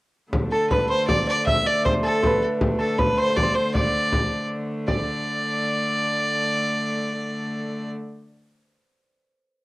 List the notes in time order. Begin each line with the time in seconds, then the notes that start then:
0.33 D3 A3, frame drum
0.52 A4, frame drum
0.70 B4, frame drum
0.89 C5
1.07 D5, frame drum
1.27 D5, frame drum
1.46 E5, frame drum
1.66 D5, frame drum
1.85 C5, frame drum
2.03 A4
2.22 C5, frame drum
2.26 B4
2.61 frame drum
2.79 A4, frame drum
2.98 B4, frame drum
3.18 C5
3.30 C5
3.36 D5, frame drum
3.43 C5
3.55 C5, frame drum
3.74 D5, frame drum
3.95 frame drum
4.13 frame drum
4.32 frame drum
4.88 D3 A3 D5, frame drum